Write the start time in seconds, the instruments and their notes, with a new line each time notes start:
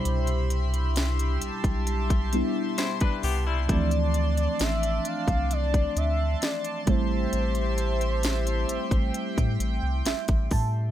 Already playing: fm electric piano B2 G3 D4 E4, analog synth pad G4 E5 B5 C6, soft synth lead C5
0.05 analog synth bass C2, closed hi-hat
0.27 closed hi-hat
0.50 closed hi-hat
0.74 closed hi-hat
0.96 snare, closed hi-hat
1.19 closed hi-hat
1.42 analog synth bass B1, analog synth pad A5, closed hi-hat
1.64 analog synth bass B1, kick, closed hi-hat
1.87 closed hi-hat
2.10 kick, closed hi-hat
2.33 fm electric piano G3 B3 D4 E4, closed hi-hat
2.78 clean electric guitar E4 C5, snare, closed hi-hat
3.00 clean electric guitar D4 B4, kick, closed hi-hat
3.23 analog synth bass C2, clean electric guitar B3 G4, open hi-hat
3.47 clean electric guitar G3 E4
3.68 analog synth bass D2, fm electric piano E3 A3 C4, analog synth pad D4 D5 A5, soft synth lead D5, kick, closed hi-hat
3.72 fm electric piano E3 F3
3.91 closed hi-hat
4.14 closed hi-hat
4.37 closed hi-hat
4.59 analog synth bass A1, soft synth lead E5, snare, closed hi-hat
4.83 closed hi-hat
5.05 soft synth lead F5, closed hi-hat
5.28 analog synth bass C2, kick, closed hi-hat
5.51 soft synth lead D5, closed hi-hat
5.74 kick, closed hi-hat
5.96 analog synth bass D2, soft synth lead E5, closed hi-hat
6.42 soft synth lead D5, snare, closed hi-hat
6.64 closed hi-hat
6.86 analog synth bass A1, fm electric piano G3 A3 C4, analog synth pad G4 E5 C6, soft synth lead C5, kick, closed hi-hat
6.90 fm electric piano E4
7.33 analog synth bass A1, closed hi-hat
7.55 closed hi-hat
7.78 closed hi-hat
8.01 closed hi-hat
8.23 snare, closed hi-hat
8.47 closed hi-hat
8.69 analog synth bass A1, analog synth pad G5, closed hi-hat
8.91 analog synth bass A1, kick, closed hi-hat
9.14 closed hi-hat
9.38 analog synth bass A2, kick, closed hi-hat
9.60 analog synth bass A1, closed hi-hat
9.83 analog synth bass C2
10.05 analog synth bass A1, fm electric piano E5, snare, closed hi-hat
10.28 analog synth bass A1, kick, closed hi-hat
10.51 analog synth bass A2, fm electric piano A5, kick, open hi-hat